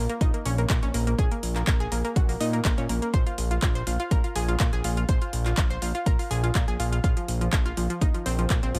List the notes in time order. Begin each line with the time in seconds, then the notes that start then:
0.09 A#3, closed hi-hat
0.21 A#1 D#4, kick, closed hi-hat
0.34 A#3, closed hi-hat
0.45 A#1 C#4, open hi-hat
0.58 A#3, closed hi-hat
0.70 A#2 A#3, kick, clap, closed hi-hat
0.83 A#1 C#4, closed hi-hat
0.94 A#1 A#3, open hi-hat
1.07 A#3, closed hi-hat
1.19 A#1 G#4, kick, closed hi-hat
1.31 A#3, closed hi-hat
1.43 A#1, open hi-hat
1.56 A#3, clap, closed hi-hat
1.67 A#1 A#3, kick, clap, closed hi-hat
1.80 G#4, closed hi-hat
1.92 A#1 A#3, open hi-hat
2.05 A#3, closed hi-hat
2.16 A#1 F#4, kick, closed hi-hat
2.29 A#3, open hi-hat
2.40 A#2 D#4, open hi-hat
2.53 A#3, closed hi-hat
2.65 A#1 A#3, kick, clap, closed hi-hat
2.78 A#2 C#4, closed hi-hat
2.89 A#1 A#3, open hi-hat
3.02 A#3, closed hi-hat
3.14 A#1 C5, kick, closed hi-hat
3.27 F4, closed hi-hat
3.38 A#1, open hi-hat
3.51 F4, closed hi-hat
3.62 A#1 F4, kick, clap, closed hi-hat
3.75 C5, closed hi-hat
3.87 A#1 F4, open hi-hat
4.00 F4, closed hi-hat
4.11 A#1 A#4, kick, closed hi-hat
4.24 F4, closed hi-hat
4.36 A#1 G#4, open hi-hat
4.48 F4, closed hi-hat
4.60 A#2 F4, kick, clap, closed hi-hat
4.73 A#1 G#4, closed hi-hat
4.84 A#1 F4, open hi-hat
4.97 F4, closed hi-hat
5.09 A#1 C5, kick, closed hi-hat
5.22 F4, closed hi-hat
5.33 A#1, open hi-hat
5.46 F4, clap, closed hi-hat
5.57 A#1 F4, kick, clap, closed hi-hat
5.70 C5, closed hi-hat
5.82 A#1 F4, open hi-hat
5.95 F4, closed hi-hat
6.06 A#1 A#4, kick, closed hi-hat
6.19 F4, open hi-hat
6.31 A#1 G#4, open hi-hat
6.44 F4, closed hi-hat
6.55 A#2 F4, kick, clap, closed hi-hat
6.68 A#1 G#4, closed hi-hat
6.79 A#1 F4, open hi-hat
6.92 F4, closed hi-hat
7.04 A#1 F4, kick, closed hi-hat
7.17 F3, closed hi-hat
7.28 A#1, open hi-hat
7.41 F3, closed hi-hat
7.53 A#1 F3, kick, clap, closed hi-hat
7.66 F4, closed hi-hat
7.77 A#1 F3, open hi-hat
7.90 F3, closed hi-hat
8.01 A#1 D#4, kick, closed hi-hat
8.14 F3, closed hi-hat
8.26 A#1 C4, open hi-hat
8.39 F3, closed hi-hat
8.50 A#2 F3, kick, clap, closed hi-hat
8.63 A#1 C4, closed hi-hat
8.75 A#1 F3, open hi-hat